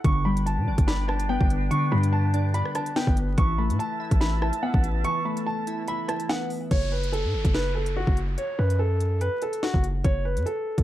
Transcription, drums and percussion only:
0.04 kick, closed hi-hat
0.37 closed hi-hat
0.47 closed hi-hat
0.78 kick, closed hi-hat
0.88 snare
1.09 cross-stick
1.20 closed hi-hat
1.41 kick
1.50 closed hi-hat
1.71 closed hi-hat
2.03 closed hi-hat
2.34 closed hi-hat
2.54 closed hi-hat
2.65 cross-stick
2.75 cross-stick, closed hi-hat
2.86 closed hi-hat
2.96 snare
3.07 kick
3.17 closed hi-hat
3.38 kick, closed hi-hat
3.70 closed hi-hat
3.80 closed hi-hat
4.11 kick, closed hi-hat
4.21 snare
4.42 cross-stick
4.53 closed hi-hat
4.74 kick
4.84 closed hi-hat
5.04 closed hi-hat
5.37 closed hi-hat
5.67 closed hi-hat
5.88 closed hi-hat
6.09 cross-stick, closed hi-hat
6.20 closed hi-hat
6.29 snare
6.50 open hi-hat
6.71 kick, closed hi-hat, crash
7.03 closed hi-hat
7.13 closed hi-hat
7.45 kick, closed hi-hat
7.54 snare
7.86 closed hi-hat
8.07 kick
8.17 closed hi-hat
8.38 closed hi-hat
8.70 closed hi-hat
9.00 closed hi-hat
9.21 closed hi-hat
9.42 closed hi-hat
9.53 closed hi-hat
9.63 snare
9.74 kick
9.84 closed hi-hat
10.04 kick, closed hi-hat
10.37 closed hi-hat
10.47 closed hi-hat
10.78 kick, closed hi-hat

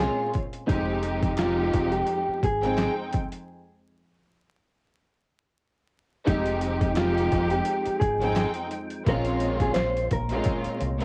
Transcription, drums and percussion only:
0.34 kick, closed hi-hat
0.53 closed hi-hat
0.69 kick, closed hi-hat
1.03 closed hi-hat
1.23 kick, closed hi-hat
1.37 snare, clap, closed hi-hat
1.74 kick, closed hi-hat
1.92 closed hi-hat
2.07 closed hi-hat
2.43 kick, closed hi-hat
2.63 closed hi-hat
2.78 snare, clap, closed hi-hat
3.13 kick, closed hi-hat
3.32 closed hi-hat
6.27 kick, closed hi-hat
6.45 closed hi-hat
6.61 closed hi-hat
6.81 kick, closed hi-hat
6.95 snare, clap, closed hi-hat
7.18 closed hi-hat
7.32 kick, closed hi-hat
7.50 closed hi-hat
7.65 closed hi-hat
7.85 closed hi-hat
8.01 kick, closed hi-hat
8.22 closed hi-hat
8.36 snare, clap, closed hi-hat
8.54 closed hi-hat
8.71 closed hi-hat
8.90 closed hi-hat
9.07 kick, closed hi-hat
9.25 closed hi-hat
9.40 closed hi-hat
9.60 kick, closed hi-hat
9.74 snare, clap, closed hi-hat
9.97 closed hi-hat
10.11 kick, closed hi-hat
10.29 closed hi-hat
10.44 kick, closed hi-hat
10.64 closed hi-hat
10.81 closed hi-hat
11.00 closed hi-hat

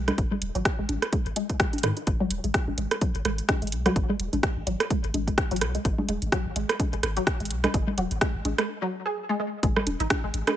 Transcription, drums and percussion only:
0.08 cross-stick, closed hi-hat, high conga, low conga
0.18 kick, closed hi-hat
0.31 low conga
0.42 closed hi-hat
0.55 closed hi-hat
0.65 kick, cross-stick, closed hi-hat
0.89 closed hi-hat, high conga
1.02 cross-stick, closed hi-hat
1.13 kick, closed hi-hat
1.26 closed hi-hat
1.36 closed hi-hat
1.49 kick, closed hi-hat
1.60 kick, cross-stick, closed hi-hat
1.73 closed hi-hat, high conga
1.78 closed hi-hat
1.83 cross-stick, closed hi-hat
1.97 closed hi-hat
2.07 kick, closed hi-hat
2.21 low conga
2.31 closed hi-hat
2.44 closed hi-hat
2.54 kick, cross-stick, closed hi-hat
2.68 high conga
2.78 closed hi-hat
2.91 cross-stick, closed hi-hat
3.01 kick, closed hi-hat
3.15 closed hi-hat
3.25 cross-stick, closed hi-hat
3.38 closed hi-hat
3.49 kick, cross-stick, closed hi-hat, high conga
3.62 closed hi-hat
3.67 closed hi-hat
3.72 closed hi-hat
3.86 cross-stick, closed hi-hat, low conga
3.96 kick, closed hi-hat
4.09 low conga
4.20 closed hi-hat
4.33 closed hi-hat, high conga
4.43 kick, cross-stick, closed hi-hat
4.67 closed hi-hat
4.80 cross-stick, closed hi-hat
4.90 kick, closed hi-hat
5.04 closed hi-hat
5.14 closed hi-hat, high conga
5.27 kick, closed hi-hat
5.38 kick, cross-stick, closed hi-hat
5.51 closed hi-hat
5.56 closed hi-hat
5.61 cross-stick, closed hi-hat
5.75 closed hi-hat
5.85 kick, closed hi-hat
5.98 high conga, low conga
6.09 closed hi-hat
6.22 closed hi-hat
6.32 kick, cross-stick, closed hi-hat
6.56 closed hi-hat
6.69 cross-stick, closed hi-hat
6.80 kick, closed hi-hat, high conga
6.93 closed hi-hat
7.03 cross-stick, closed hi-hat
7.17 closed hi-hat
7.27 kick, cross-stick, closed hi-hat
7.40 closed hi-hat
7.45 closed hi-hat
7.50 closed hi-hat
7.64 cross-stick, closed hi-hat, high conga, low conga
7.74 kick, closed hi-hat
7.87 low conga
7.98 closed hi-hat
8.11 closed hi-hat
8.21 kick, cross-stick, closed hi-hat
8.45 closed hi-hat, high conga
8.58 cross-stick, closed hi-hat
9.63 kick, closed hi-hat
9.77 cross-stick, low conga
9.87 closed hi-hat, high conga
10.00 closed hi-hat
10.10 kick, cross-stick, closed hi-hat, high conga
10.34 closed hi-hat
10.47 cross-stick, closed hi-hat, high conga

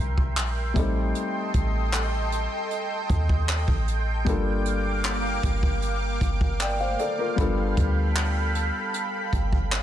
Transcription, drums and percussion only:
0.18 kick
0.37 clap, closed hi-hat
0.76 kick, closed hi-hat
1.15 closed hi-hat
1.54 kick, closed hi-hat
1.93 clap, closed hi-hat
2.32 closed hi-hat
2.71 closed hi-hat
3.10 kick, closed hi-hat
3.29 kick
3.49 clap, closed hi-hat
3.68 kick
3.88 closed hi-hat
4.27 kick, closed hi-hat
4.65 closed hi-hat
5.04 clap, closed hi-hat
5.43 kick, closed hi-hat
5.63 kick
5.82 closed hi-hat
6.21 kick, closed hi-hat
6.41 kick
6.60 clap, closed hi-hat
6.99 closed hi-hat
7.38 kick, closed hi-hat
7.77 kick, closed hi-hat
8.16 clap, closed hi-hat
8.55 closed hi-hat
8.94 closed hi-hat
9.33 kick, closed hi-hat
9.53 kick
9.72 clap, closed hi-hat

